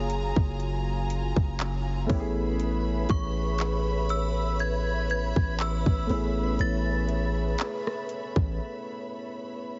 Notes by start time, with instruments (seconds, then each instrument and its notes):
Already playing: 808-style bass F#1, grand piano F#3 A#3 C#4 F4 G#4, string section F#3 F4 G#5 A#5, synth bell D#6
0.10 closed hi-hat
0.36 808-style bass F#1, kick
0.60 closed hi-hat
1.10 closed hi-hat
1.36 808-style bass F#1, kick
1.59 clap, closed hi-hat
2.06 808-style bass A1, grand piano A3 B3 C#4, string section B4 C#5 E5 B5, kick, open hi-hat
2.11 grand piano E4 G4
2.20 grand piano G#4
2.60 closed hi-hat
3.09 808-style bass A1, synth bell C#6, kick, closed hi-hat
3.58 clap, closed hi-hat
4.09 synth bell E6, closed hi-hat
4.59 synth bell G#6, closed hi-hat
5.10 synth bell G#6, closed hi-hat
5.36 808-style bass A1, kick
5.59 synth bell E6, clap, closed hi-hat
5.86 808-style bass A1, kick
6.06 808-style bass A1, grand piano A3 B3 C#4, open hi-hat
6.11 grand piano E4 G#4
6.59 808-style bass A1, synth bell A6, closed hi-hat
7.09 closed hi-hat
7.58 clap, closed hi-hat
7.87 cross-stick
8.09 closed hi-hat
8.36 808-style bass A1, kick